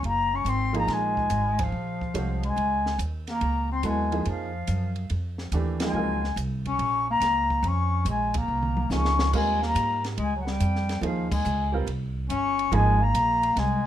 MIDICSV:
0, 0, Header, 1, 6, 480
1, 0, Start_track
1, 0, Tempo, 422833
1, 997, Time_signature, 4, 2, 24, 8
1, 15740, End_track
2, 0, Start_track
2, 0, Title_t, "Flute"
2, 0, Program_c, 0, 73
2, 77, Note_on_c, 0, 82, 100
2, 397, Note_on_c, 0, 85, 94
2, 414, Note_off_c, 0, 82, 0
2, 553, Note_on_c, 0, 84, 95
2, 570, Note_off_c, 0, 85, 0
2, 859, Note_off_c, 0, 84, 0
2, 884, Note_on_c, 0, 82, 87
2, 1048, Note_on_c, 0, 80, 89
2, 1065, Note_off_c, 0, 82, 0
2, 1851, Note_on_c, 0, 77, 87
2, 1868, Note_off_c, 0, 80, 0
2, 2786, Note_off_c, 0, 77, 0
2, 2804, Note_on_c, 0, 80, 90
2, 3375, Note_off_c, 0, 80, 0
2, 3762, Note_on_c, 0, 82, 86
2, 4189, Note_off_c, 0, 82, 0
2, 4242, Note_on_c, 0, 84, 81
2, 4368, Note_off_c, 0, 84, 0
2, 4404, Note_on_c, 0, 80, 77
2, 4828, Note_off_c, 0, 80, 0
2, 4873, Note_on_c, 0, 77, 76
2, 5769, Note_off_c, 0, 77, 0
2, 6644, Note_on_c, 0, 80, 91
2, 7214, Note_off_c, 0, 80, 0
2, 7595, Note_on_c, 0, 85, 97
2, 8025, Note_off_c, 0, 85, 0
2, 8069, Note_on_c, 0, 82, 100
2, 8708, Note_on_c, 0, 85, 94
2, 8725, Note_off_c, 0, 82, 0
2, 9171, Note_off_c, 0, 85, 0
2, 9197, Note_on_c, 0, 80, 75
2, 9478, Note_off_c, 0, 80, 0
2, 9514, Note_on_c, 0, 82, 80
2, 10089, Note_off_c, 0, 82, 0
2, 10140, Note_on_c, 0, 85, 95
2, 10574, Note_off_c, 0, 85, 0
2, 10618, Note_on_c, 0, 80, 96
2, 10908, Note_off_c, 0, 80, 0
2, 10965, Note_on_c, 0, 82, 94
2, 11389, Note_off_c, 0, 82, 0
2, 11592, Note_on_c, 0, 80, 95
2, 11776, Note_off_c, 0, 80, 0
2, 11804, Note_on_c, 0, 78, 70
2, 11930, Note_on_c, 0, 79, 90
2, 11947, Note_off_c, 0, 78, 0
2, 12525, Note_off_c, 0, 79, 0
2, 12532, Note_on_c, 0, 77, 86
2, 12825, Note_off_c, 0, 77, 0
2, 12863, Note_on_c, 0, 80, 73
2, 13298, Note_off_c, 0, 80, 0
2, 13998, Note_on_c, 0, 85, 95
2, 14463, Note_on_c, 0, 80, 97
2, 14480, Note_off_c, 0, 85, 0
2, 14789, Note_on_c, 0, 82, 102
2, 14806, Note_off_c, 0, 80, 0
2, 15420, Note_on_c, 0, 80, 97
2, 15437, Note_off_c, 0, 82, 0
2, 15740, Note_off_c, 0, 80, 0
2, 15740, End_track
3, 0, Start_track
3, 0, Title_t, "Upright piano"
3, 0, Program_c, 1, 0
3, 827, Note_on_c, 1, 53, 68
3, 833, Note_on_c, 1, 58, 62
3, 848, Note_on_c, 1, 63, 64
3, 851, Note_on_c, 1, 68, 74
3, 1439, Note_off_c, 1, 53, 0
3, 1442, Note_off_c, 1, 58, 0
3, 1449, Note_off_c, 1, 63, 0
3, 1451, Note_off_c, 1, 68, 0
3, 2432, Note_on_c, 1, 56, 53
3, 2434, Note_on_c, 1, 61, 49
3, 2444, Note_on_c, 1, 66, 52
3, 2451, Note_on_c, 1, 72, 58
3, 3173, Note_off_c, 1, 56, 0
3, 3175, Note_off_c, 1, 61, 0
3, 3179, Note_off_c, 1, 66, 0
3, 3183, Note_off_c, 1, 72, 0
3, 4354, Note_on_c, 1, 54, 53
3, 4363, Note_on_c, 1, 59, 52
3, 4373, Note_on_c, 1, 64, 52
3, 4373, Note_on_c, 1, 69, 59
3, 4647, Note_off_c, 1, 54, 0
3, 4651, Note_off_c, 1, 59, 0
3, 4656, Note_off_c, 1, 64, 0
3, 4656, Note_off_c, 1, 69, 0
3, 4674, Note_on_c, 1, 53, 61
3, 4677, Note_on_c, 1, 58, 56
3, 4685, Note_on_c, 1, 63, 54
3, 4693, Note_on_c, 1, 68, 65
3, 5093, Note_off_c, 1, 53, 0
3, 5094, Note_off_c, 1, 58, 0
3, 5098, Note_off_c, 1, 63, 0
3, 5102, Note_off_c, 1, 68, 0
3, 6277, Note_on_c, 1, 52, 59
3, 6283, Note_on_c, 1, 57, 55
3, 6290, Note_on_c, 1, 62, 58
3, 6293, Note_on_c, 1, 67, 67
3, 6568, Note_off_c, 1, 52, 0
3, 6571, Note_off_c, 1, 57, 0
3, 6574, Note_off_c, 1, 62, 0
3, 6576, Note_off_c, 1, 67, 0
3, 6593, Note_on_c, 1, 53, 62
3, 6605, Note_on_c, 1, 58, 60
3, 6612, Note_on_c, 1, 63, 61
3, 6614, Note_on_c, 1, 68, 66
3, 6752, Note_on_c, 1, 54, 55
3, 6762, Note_on_c, 1, 60, 54
3, 6768, Note_on_c, 1, 70, 62
3, 6771, Note_on_c, 1, 65, 54
3, 7011, Note_off_c, 1, 53, 0
3, 7017, Note_off_c, 1, 58, 0
3, 7021, Note_off_c, 1, 63, 0
3, 7022, Note_off_c, 1, 68, 0
3, 7045, Note_off_c, 1, 54, 0
3, 7050, Note_off_c, 1, 60, 0
3, 7053, Note_off_c, 1, 70, 0
3, 7055, Note_off_c, 1, 65, 0
3, 10111, Note_on_c, 1, 53, 54
3, 10117, Note_on_c, 1, 58, 51
3, 10120, Note_on_c, 1, 63, 50
3, 10128, Note_on_c, 1, 68, 54
3, 10592, Note_off_c, 1, 53, 0
3, 10595, Note_off_c, 1, 58, 0
3, 10597, Note_off_c, 1, 63, 0
3, 10601, Note_off_c, 1, 68, 0
3, 10601, Note_on_c, 1, 55, 60
3, 10602, Note_on_c, 1, 60, 54
3, 10608, Note_on_c, 1, 65, 56
3, 10614, Note_on_c, 1, 70, 69
3, 11943, Note_off_c, 1, 55, 0
3, 11944, Note_off_c, 1, 60, 0
3, 11947, Note_off_c, 1, 65, 0
3, 11950, Note_off_c, 1, 70, 0
3, 12501, Note_on_c, 1, 53, 59
3, 12512, Note_on_c, 1, 58, 54
3, 12520, Note_on_c, 1, 63, 52
3, 12523, Note_on_c, 1, 68, 60
3, 12799, Note_off_c, 1, 53, 0
3, 12805, Note_off_c, 1, 58, 0
3, 12808, Note_off_c, 1, 63, 0
3, 12810, Note_off_c, 1, 68, 0
3, 13305, Note_on_c, 1, 55, 70
3, 13320, Note_on_c, 1, 60, 61
3, 13325, Note_on_c, 1, 65, 61
3, 13332, Note_on_c, 1, 70, 71
3, 13452, Note_off_c, 1, 55, 0
3, 13460, Note_off_c, 1, 60, 0
3, 13462, Note_off_c, 1, 65, 0
3, 13466, Note_off_c, 1, 70, 0
3, 14437, Note_on_c, 1, 53, 69
3, 14444, Note_on_c, 1, 58, 63
3, 14450, Note_on_c, 1, 63, 64
3, 14453, Note_on_c, 1, 68, 79
3, 14728, Note_off_c, 1, 53, 0
3, 14732, Note_off_c, 1, 58, 0
3, 14735, Note_off_c, 1, 63, 0
3, 14736, Note_off_c, 1, 68, 0
3, 15740, End_track
4, 0, Start_track
4, 0, Title_t, "Bass clarinet"
4, 0, Program_c, 2, 71
4, 60, Note_on_c, 2, 58, 79
4, 383, Note_on_c, 2, 61, 76
4, 400, Note_off_c, 2, 58, 0
4, 541, Note_on_c, 2, 60, 77
4, 559, Note_off_c, 2, 61, 0
4, 853, Note_off_c, 2, 60, 0
4, 859, Note_on_c, 2, 58, 75
4, 1006, Note_on_c, 2, 56, 80
4, 1023, Note_off_c, 2, 58, 0
4, 1822, Note_on_c, 2, 53, 72
4, 1839, Note_off_c, 2, 56, 0
4, 2768, Note_off_c, 2, 53, 0
4, 2775, Note_on_c, 2, 56, 74
4, 3360, Note_off_c, 2, 56, 0
4, 3745, Note_on_c, 2, 58, 76
4, 4180, Note_off_c, 2, 58, 0
4, 4220, Note_on_c, 2, 60, 69
4, 4356, Note_off_c, 2, 60, 0
4, 4371, Note_on_c, 2, 56, 65
4, 4811, Note_off_c, 2, 56, 0
4, 4857, Note_on_c, 2, 53, 64
4, 5761, Note_off_c, 2, 53, 0
4, 6611, Note_on_c, 2, 56, 71
4, 7197, Note_off_c, 2, 56, 0
4, 7576, Note_on_c, 2, 61, 86
4, 8014, Note_off_c, 2, 61, 0
4, 8065, Note_on_c, 2, 58, 85
4, 8691, Note_on_c, 2, 61, 77
4, 8708, Note_off_c, 2, 58, 0
4, 9163, Note_off_c, 2, 61, 0
4, 9179, Note_on_c, 2, 56, 60
4, 9469, Note_off_c, 2, 56, 0
4, 9502, Note_on_c, 2, 58, 69
4, 10082, Note_off_c, 2, 58, 0
4, 10122, Note_on_c, 2, 61, 75
4, 10564, Note_off_c, 2, 61, 0
4, 10597, Note_on_c, 2, 56, 76
4, 10896, Note_off_c, 2, 56, 0
4, 10920, Note_on_c, 2, 58, 76
4, 11365, Note_off_c, 2, 58, 0
4, 11553, Note_on_c, 2, 56, 77
4, 11755, Note_off_c, 2, 56, 0
4, 11760, Note_on_c, 2, 54, 56
4, 11871, Note_on_c, 2, 55, 81
4, 11888, Note_off_c, 2, 54, 0
4, 12502, Note_off_c, 2, 55, 0
4, 12509, Note_on_c, 2, 53, 70
4, 12812, Note_off_c, 2, 53, 0
4, 12832, Note_on_c, 2, 56, 65
4, 13281, Note_off_c, 2, 56, 0
4, 13959, Note_on_c, 2, 61, 91
4, 14447, Note_on_c, 2, 56, 82
4, 14464, Note_off_c, 2, 61, 0
4, 14773, Note_on_c, 2, 58, 87
4, 14790, Note_off_c, 2, 56, 0
4, 15421, Note_on_c, 2, 56, 90
4, 15438, Note_off_c, 2, 58, 0
4, 15740, Note_off_c, 2, 56, 0
4, 15740, End_track
5, 0, Start_track
5, 0, Title_t, "Upright bass"
5, 0, Program_c, 3, 32
5, 32, Note_on_c, 3, 30, 78
5, 500, Note_off_c, 3, 30, 0
5, 507, Note_on_c, 3, 32, 83
5, 977, Note_off_c, 3, 32, 0
5, 994, Note_on_c, 3, 34, 82
5, 1461, Note_off_c, 3, 34, 0
5, 1472, Note_on_c, 3, 32, 86
5, 1940, Note_off_c, 3, 32, 0
5, 1955, Note_on_c, 3, 34, 75
5, 2421, Note_off_c, 3, 34, 0
5, 2431, Note_on_c, 3, 36, 78
5, 2899, Note_off_c, 3, 36, 0
5, 2909, Note_on_c, 3, 37, 78
5, 3378, Note_off_c, 3, 37, 0
5, 3387, Note_on_c, 3, 39, 83
5, 3858, Note_off_c, 3, 39, 0
5, 3872, Note_on_c, 3, 37, 77
5, 4340, Note_off_c, 3, 37, 0
5, 4347, Note_on_c, 3, 39, 81
5, 4817, Note_off_c, 3, 39, 0
5, 4834, Note_on_c, 3, 41, 85
5, 5301, Note_off_c, 3, 41, 0
5, 5311, Note_on_c, 3, 42, 88
5, 5779, Note_off_c, 3, 42, 0
5, 5793, Note_on_c, 3, 41, 80
5, 6255, Note_off_c, 3, 41, 0
5, 6262, Note_on_c, 3, 39, 85
5, 6730, Note_off_c, 3, 39, 0
5, 6737, Note_on_c, 3, 37, 81
5, 7211, Note_off_c, 3, 37, 0
5, 7222, Note_on_c, 3, 36, 89
5, 7694, Note_off_c, 3, 36, 0
5, 7707, Note_on_c, 3, 34, 76
5, 8170, Note_off_c, 3, 34, 0
5, 8177, Note_on_c, 3, 37, 86
5, 8651, Note_off_c, 3, 37, 0
5, 8657, Note_on_c, 3, 41, 87
5, 9131, Note_off_c, 3, 41, 0
5, 9139, Note_on_c, 3, 34, 85
5, 9612, Note_off_c, 3, 34, 0
5, 9626, Note_on_c, 3, 36, 71
5, 10095, Note_off_c, 3, 36, 0
5, 10103, Note_on_c, 3, 37, 80
5, 10573, Note_off_c, 3, 37, 0
5, 10593, Note_on_c, 3, 39, 88
5, 11059, Note_off_c, 3, 39, 0
5, 11068, Note_on_c, 3, 44, 92
5, 11536, Note_off_c, 3, 44, 0
5, 11552, Note_on_c, 3, 37, 78
5, 12018, Note_off_c, 3, 37, 0
5, 12036, Note_on_c, 3, 41, 89
5, 12496, Note_off_c, 3, 41, 0
5, 12503, Note_on_c, 3, 39, 90
5, 12974, Note_off_c, 3, 39, 0
5, 12996, Note_on_c, 3, 37, 95
5, 13461, Note_off_c, 3, 37, 0
5, 13469, Note_on_c, 3, 36, 81
5, 13938, Note_off_c, 3, 36, 0
5, 13958, Note_on_c, 3, 31, 86
5, 14423, Note_off_c, 3, 31, 0
5, 14435, Note_on_c, 3, 32, 83
5, 14902, Note_off_c, 3, 32, 0
5, 14923, Note_on_c, 3, 34, 91
5, 15386, Note_off_c, 3, 34, 0
5, 15394, Note_on_c, 3, 36, 80
5, 15740, Note_off_c, 3, 36, 0
5, 15740, End_track
6, 0, Start_track
6, 0, Title_t, "Drums"
6, 46, Note_on_c, 9, 51, 47
6, 159, Note_off_c, 9, 51, 0
6, 520, Note_on_c, 9, 44, 53
6, 520, Note_on_c, 9, 51, 61
6, 634, Note_off_c, 9, 44, 0
6, 634, Note_off_c, 9, 51, 0
6, 844, Note_on_c, 9, 51, 43
6, 958, Note_off_c, 9, 51, 0
6, 1001, Note_on_c, 9, 51, 51
6, 1007, Note_on_c, 9, 38, 33
6, 1115, Note_off_c, 9, 51, 0
6, 1121, Note_off_c, 9, 38, 0
6, 1330, Note_on_c, 9, 36, 48
6, 1443, Note_off_c, 9, 36, 0
6, 1473, Note_on_c, 9, 44, 60
6, 1473, Note_on_c, 9, 51, 57
6, 1587, Note_off_c, 9, 44, 0
6, 1587, Note_off_c, 9, 51, 0
6, 1801, Note_on_c, 9, 51, 69
6, 1809, Note_on_c, 9, 36, 71
6, 1915, Note_off_c, 9, 51, 0
6, 1922, Note_off_c, 9, 36, 0
6, 2287, Note_on_c, 9, 36, 42
6, 2400, Note_off_c, 9, 36, 0
6, 2437, Note_on_c, 9, 44, 49
6, 2437, Note_on_c, 9, 51, 60
6, 2551, Note_off_c, 9, 44, 0
6, 2551, Note_off_c, 9, 51, 0
6, 2762, Note_on_c, 9, 51, 41
6, 2875, Note_off_c, 9, 51, 0
6, 2922, Note_on_c, 9, 51, 50
6, 3036, Note_off_c, 9, 51, 0
6, 3248, Note_on_c, 9, 38, 44
6, 3362, Note_off_c, 9, 38, 0
6, 3396, Note_on_c, 9, 44, 55
6, 3396, Note_on_c, 9, 51, 63
6, 3509, Note_off_c, 9, 44, 0
6, 3509, Note_off_c, 9, 51, 0
6, 3715, Note_on_c, 9, 51, 41
6, 3721, Note_on_c, 9, 38, 31
6, 3829, Note_off_c, 9, 51, 0
6, 3835, Note_off_c, 9, 38, 0
6, 3871, Note_on_c, 9, 51, 57
6, 3985, Note_off_c, 9, 51, 0
6, 4348, Note_on_c, 9, 44, 46
6, 4348, Note_on_c, 9, 51, 61
6, 4462, Note_off_c, 9, 44, 0
6, 4462, Note_off_c, 9, 51, 0
6, 4678, Note_on_c, 9, 51, 42
6, 4791, Note_off_c, 9, 51, 0
6, 4829, Note_on_c, 9, 51, 52
6, 4942, Note_off_c, 9, 51, 0
6, 5305, Note_on_c, 9, 44, 60
6, 5305, Note_on_c, 9, 51, 64
6, 5418, Note_off_c, 9, 44, 0
6, 5418, Note_off_c, 9, 51, 0
6, 5626, Note_on_c, 9, 51, 39
6, 5739, Note_off_c, 9, 51, 0
6, 5785, Note_on_c, 9, 51, 53
6, 5899, Note_off_c, 9, 51, 0
6, 6111, Note_on_c, 9, 38, 41
6, 6225, Note_off_c, 9, 38, 0
6, 6264, Note_on_c, 9, 44, 51
6, 6264, Note_on_c, 9, 51, 59
6, 6378, Note_off_c, 9, 44, 0
6, 6378, Note_off_c, 9, 51, 0
6, 6582, Note_on_c, 9, 51, 61
6, 6588, Note_on_c, 9, 38, 73
6, 6696, Note_off_c, 9, 51, 0
6, 6702, Note_off_c, 9, 38, 0
6, 7084, Note_on_c, 9, 38, 35
6, 7197, Note_off_c, 9, 38, 0
6, 7233, Note_on_c, 9, 44, 54
6, 7233, Note_on_c, 9, 51, 63
6, 7346, Note_off_c, 9, 44, 0
6, 7346, Note_off_c, 9, 51, 0
6, 7554, Note_on_c, 9, 51, 42
6, 7560, Note_on_c, 9, 36, 43
6, 7667, Note_off_c, 9, 51, 0
6, 7674, Note_off_c, 9, 36, 0
6, 7709, Note_on_c, 9, 51, 50
6, 7823, Note_off_c, 9, 51, 0
6, 8189, Note_on_c, 9, 44, 55
6, 8189, Note_on_c, 9, 51, 61
6, 8195, Note_on_c, 9, 38, 35
6, 8303, Note_off_c, 9, 44, 0
6, 8303, Note_off_c, 9, 51, 0
6, 8309, Note_off_c, 9, 38, 0
6, 8518, Note_on_c, 9, 36, 49
6, 8632, Note_off_c, 9, 36, 0
6, 8670, Note_on_c, 9, 51, 51
6, 8783, Note_off_c, 9, 51, 0
6, 9145, Note_on_c, 9, 44, 59
6, 9145, Note_on_c, 9, 51, 61
6, 9259, Note_off_c, 9, 44, 0
6, 9259, Note_off_c, 9, 51, 0
6, 9468, Note_on_c, 9, 51, 68
6, 9477, Note_on_c, 9, 36, 77
6, 9582, Note_off_c, 9, 51, 0
6, 9591, Note_off_c, 9, 36, 0
6, 9793, Note_on_c, 9, 47, 47
6, 9906, Note_off_c, 9, 47, 0
6, 9953, Note_on_c, 9, 48, 58
6, 10066, Note_off_c, 9, 48, 0
6, 10107, Note_on_c, 9, 44, 54
6, 10113, Note_on_c, 9, 38, 56
6, 10221, Note_off_c, 9, 44, 0
6, 10227, Note_off_c, 9, 38, 0
6, 10272, Note_on_c, 9, 38, 57
6, 10385, Note_off_c, 9, 38, 0
6, 10433, Note_on_c, 9, 38, 78
6, 10547, Note_off_c, 9, 38, 0
6, 10595, Note_on_c, 9, 49, 67
6, 10596, Note_on_c, 9, 36, 65
6, 10709, Note_off_c, 9, 36, 0
6, 10709, Note_off_c, 9, 49, 0
6, 10928, Note_on_c, 9, 38, 38
6, 11041, Note_off_c, 9, 38, 0
6, 11076, Note_on_c, 9, 44, 63
6, 11076, Note_on_c, 9, 51, 75
6, 11189, Note_off_c, 9, 44, 0
6, 11189, Note_off_c, 9, 51, 0
6, 11401, Note_on_c, 9, 51, 42
6, 11407, Note_on_c, 9, 38, 39
6, 11515, Note_off_c, 9, 51, 0
6, 11521, Note_off_c, 9, 38, 0
6, 11551, Note_on_c, 9, 51, 56
6, 11665, Note_off_c, 9, 51, 0
6, 11886, Note_on_c, 9, 38, 47
6, 12000, Note_off_c, 9, 38, 0
6, 12037, Note_on_c, 9, 44, 56
6, 12037, Note_on_c, 9, 51, 64
6, 12150, Note_off_c, 9, 44, 0
6, 12150, Note_off_c, 9, 51, 0
6, 12209, Note_on_c, 9, 38, 26
6, 12323, Note_off_c, 9, 38, 0
6, 12364, Note_on_c, 9, 51, 45
6, 12368, Note_on_c, 9, 38, 44
6, 12477, Note_off_c, 9, 51, 0
6, 12481, Note_off_c, 9, 38, 0
6, 12523, Note_on_c, 9, 51, 58
6, 12636, Note_off_c, 9, 51, 0
6, 12845, Note_on_c, 9, 36, 85
6, 12847, Note_on_c, 9, 49, 74
6, 12959, Note_off_c, 9, 36, 0
6, 12960, Note_off_c, 9, 49, 0
6, 12997, Note_on_c, 9, 44, 61
6, 13111, Note_off_c, 9, 44, 0
6, 13479, Note_on_c, 9, 51, 56
6, 13592, Note_off_c, 9, 51, 0
6, 13962, Note_on_c, 9, 44, 50
6, 13962, Note_on_c, 9, 51, 65
6, 14076, Note_off_c, 9, 44, 0
6, 14076, Note_off_c, 9, 51, 0
6, 14293, Note_on_c, 9, 51, 46
6, 14406, Note_off_c, 9, 51, 0
6, 14444, Note_on_c, 9, 51, 58
6, 14558, Note_off_c, 9, 51, 0
6, 14924, Note_on_c, 9, 44, 63
6, 14924, Note_on_c, 9, 51, 71
6, 15038, Note_off_c, 9, 44, 0
6, 15038, Note_off_c, 9, 51, 0
6, 15248, Note_on_c, 9, 51, 47
6, 15362, Note_off_c, 9, 51, 0
6, 15400, Note_on_c, 9, 51, 58
6, 15406, Note_on_c, 9, 38, 35
6, 15514, Note_off_c, 9, 51, 0
6, 15520, Note_off_c, 9, 38, 0
6, 15740, End_track
0, 0, End_of_file